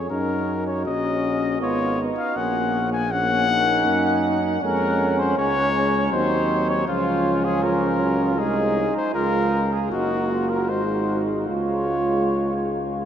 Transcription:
0.00 0.11 C#4 soft
0.10 0.88 F#2 medium
0.10 1.59 C#4 soft
0.10 0.85 D#4 medium
0.10 1.59 F#4 medium
0.10 0.66 A#4 medium
0.67 0.85 C#5 medium
0.86 1.63 A#1 soft
0.86 1.63 C#4 medium
0.86 1.60 D#5 medium
1.62 2.10 G#1 medium
1.62 2.36 B3 medium
1.62 2.09 B3 medium
1.62 2.00 F4 medium
1.62 2.01 C#5 medium
1.99 2.38 D#4 medium
2.18 2.37 F5 medium
2.36 3.88 A#1 medium
2.36 3.08 A#3 medium
2.36 2.84 A#3 medium
2.36 2.85 C#4 medium
2.36 2.92 F#5 medium
2.93 3.13 G#5 medium
3.12 4.59 A#3 medium
3.12 3.47 C#4 medium
3.12 4.58 C#4 medium
3.12 4.35 F#5 loud
3.50 4.65 D#4 medium
3.87 4.62 F#2 medium
4.62 5.36 F2 medium
4.62 5.36 G#3 medium
4.62 5.36 C#4 medium
4.62 6.14 C#4 medium
4.62 5.21 A#4 medium
5.19 5.37 C5 medium
5.37 6.11 C#2 medium
5.37 6.13 G#3 medium
5.37 6.11 C#4 medium
5.37 6.11 C#5 medium
6.12 6.87 D#2 medium
6.12 6.87 F#3 medium
6.12 6.88 C4 medium
6.12 6.89 D#4 medium
6.12 6.68 C5 medium
6.70 6.87 C#5 medium
6.87 8.41 C#2 medium
6.87 7.62 F3 medium
6.87 8.36 C#4 medium
6.87 7.62 F4 medium
6.87 7.46 F4 medium
7.45 7.64 G#4 medium
7.63 8.03 F3 medium
7.63 8.41 F4 medium
7.63 8.41 A#4 medium
8.01 8.38 F#3 medium
8.39 8.89 C2 medium
8.39 8.87 G#3 medium
8.39 9.16 D#4 medium
8.39 9.14 D#4 medium
8.39 8.96 G#4 medium
8.97 9.14 C5 medium
9.14 9.93 C#2 medium
9.14 9.88 G#3 medium
9.14 9.64 F4 medium
9.14 9.74 A#4 medium
9.73 9.92 G#4 medium
9.92 10.71 F#1 medium
9.92 10.72 A#3 soft
9.92 10.32 D#4 soft
9.92 10.70 F#4 medium
9.92 10.51 F#4 medium
10.31 10.72 F4 soft
10.50 10.71 A#4 medium
10.69 11.48 G#1 soft
10.69 11.48 G#3 soft
10.69 11.49 D#4 medium
10.69 11.49 F#4 soft
10.69 11.21 C5 medium
11.49 13.05 C#2 soft
11.49 13.05 G#3 soft
11.49 13.05 F4 medium
11.49 13.05 F4 soft
11.49 13.05 C#5 medium

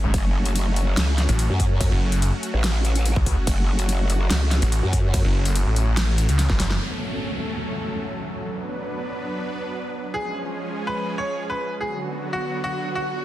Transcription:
0.00 0.12 G#1 loud
0.00 6.77 F#3 medium
0.00 6.77 A3 medium
0.00 6.77 C#4 medium
0.00 0.12 G#4 loud
0.14 0.96 F#1 loud
0.14 6.79 F#4 medium
0.14 kick loud
0.14 closed hi-hat medium
0.14 ride medium
0.45 closed hi-hat medium
0.56 closed hi-hat medium
0.56 ride soft
0.76 closed hi-hat soft
0.97 1.27 C#2 loud
0.97 snare loud
0.97 closed hi-hat medium
0.97 ride medium
1.18 snare medium
1.18 closed hi-hat soft
1.29 1.48 A1 loud
1.29 closed hi-hat medium
1.39 closed hi-hat medium
1.39 ride soft
1.50 1.90 F#2 medium
1.60 kick medium
1.60 open hi-hat medium
1.81 kick loud
1.81 closed hi-hat medium
1.81 ride medium
1.91 2.31 F#1 loud
2.12 closed hi-hat medium
2.22 closed hi-hat medium
2.22 ride soft
2.43 closed hi-hat soft
2.54 3.15 A1 loud
2.64 snare loud
2.64 closed hi-hat medium
2.64 ride medium
2.85 closed hi-hat medium
2.95 closed hi-hat medium
3.06 closed hi-hat medium
3.06 ride soft
3.16 3.35 C#2 loud
3.16 kick loud
3.26 kick medium
3.26 open hi-hat loud
3.47 4.29 F#1 loud
3.47 kick loud
3.47 closed hi-hat medium
3.47 ride medium
3.79 closed hi-hat soft
3.89 closed hi-hat medium
3.89 ride soft
4.10 closed hi-hat medium
4.31 4.60 C#2 loud
4.31 snare loud
4.31 closed hi-hat medium
4.31 ride medium
4.51 snare medium
4.51 closed hi-hat medium
4.62 4.81 A1 loud
4.62 closed hi-hat medium
4.72 closed hi-hat medium
4.72 ride soft
4.83 5.23 F#2 loud
4.93 kick medium
4.93 open hi-hat loud
5.14 kick loud
5.14 closed hi-hat medium
5.14 ride medium
5.25 5.65 F#1 loud
5.45 closed hi-hat medium
5.56 closed hi-hat medium
5.56 ride soft
5.66 6.27 A1 loud
5.76 closed hi-hat medium
5.97 snare loud
5.97 closed hi-hat medium
5.97 ride medium
6.18 closed hi-hat medium
6.29 6.48 C#2 loud
6.29 closed hi-hat medium
6.39 snare medium
6.39 closed hi-hat medium
6.39 ride soft
6.50 6.79 F#1 loud
6.50 kick loud
6.50 snare medium
6.60 kick medium
6.60 snare medium
6.60 open hi-hat loud
6.71 snare medium
6.81 10.11 F#3 medium
6.81 8.46 A3 medium
6.81 8.46 C#4 medium
6.81 8.46 A4 medium
6.81 downlifter medium
8.47 10.12 B3 medium
8.47 10.12 D4 medium
8.47 10.12 B4 medium
10.14 11.79 F3 medium
10.14 11.79 G#3 medium
10.14 11.79 C#4 medium
10.14 10.37 G#4 medium
10.14 11.79 G#4 medium
10.87 11.10 B4 medium
11.18 11.41 C#5 medium
11.50 11.73 B4 medium
11.81 13.25 D3 medium
11.81 13.25 F#3 medium
11.81 13.25 B3 medium
11.81 13.25 F#4 medium
11.81 11.96 G#4 medium
12.33 12.56 F#4 medium
12.64 12.87 F#4 medium
12.64 swell medium
12.95 13.18 F#4 medium

